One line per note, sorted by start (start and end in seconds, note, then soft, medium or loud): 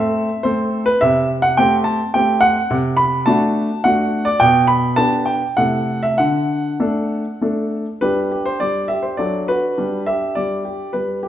0.00 0.28 A3 medium
0.00 0.28 C4 medium
0.00 0.29 A4 medium
0.00 0.43 E5 medium
0.43 0.86 A3 soft
0.43 0.86 C4 soft
0.43 0.86 A4 medium
0.43 0.86 C5 medium
0.86 1.00 B4 loud
1.01 1.56 C3 medium
1.01 1.26 E5 loud
1.42 1.57 F#5 loud
1.57 1.99 A3 medium
1.57 1.99 C4 medium
1.57 1.99 G4 medium
1.57 1.74 G5 loud
1.84 2.10 A5 medium
2.14 2.55 A3 soft
2.14 2.55 C4 soft
2.14 2.56 G4 medium
2.14 2.39 G5 medium
2.41 2.75 F#5 loud
2.71 3.25 C3 medium
2.97 3.23 B5 loud
3.26 3.68 A3 medium
3.26 3.69 D4 medium
3.26 3.69 F#4 medium
3.26 3.80 A5 medium
3.84 4.26 A3 soft
3.84 4.26 D4 soft
3.84 4.27 F#4 medium
3.84 4.27 F#5 loud
4.25 4.41 D5 medium
4.40 4.97 B2 medium
4.40 4.67 G5 loud
4.67 4.95 B5 loud
4.96 5.41 B3 medium
4.96 5.41 D4 medium
4.96 5.41 G4 medium
4.96 5.27 A5 loud
5.26 5.54 G5 medium
5.57 6.17 C3 medium
5.57 6.15 A3 soft
5.57 6.16 E4 soft
5.57 6.16 A4 soft
5.57 6.03 F#5 medium
6.03 6.19 E5 medium
6.18 6.79 D3 medium
6.18 7.71 F#5 medium
6.80 7.24 A3 soft
6.80 7.24 D4 soft
6.80 7.24 A4 medium
7.41 7.85 A3 soft
7.41 7.85 D4 soft
7.41 7.85 A4 soft
8.01 8.31 G3 medium
8.01 9.15 D4 soft
8.01 8.30 G4 soft
8.01 8.41 B4 medium
8.32 8.60 G4 soft
8.46 8.60 C5 medium
8.60 8.89 G3 soft
8.60 8.90 D5 medium
8.88 9.18 G4 soft
8.88 9.04 E5 medium
9.03 9.18 C5 medium
9.17 9.47 F#3 medium
9.17 9.74 D4 soft
9.17 9.73 A4 soft
9.17 9.45 D5 medium
9.48 9.77 F#4 soft
9.48 10.07 B4 medium
9.78 10.06 G3 medium
9.78 11.28 D4 soft
9.78 10.06 G4 soft
10.06 10.35 G4 soft
10.06 10.36 E5 medium
10.35 10.64 G3 soft
10.35 10.93 D5 medium
10.65 10.93 G4 soft
10.93 11.22 G3 soft
10.93 11.19 B4 medium
11.23 11.28 G4 medium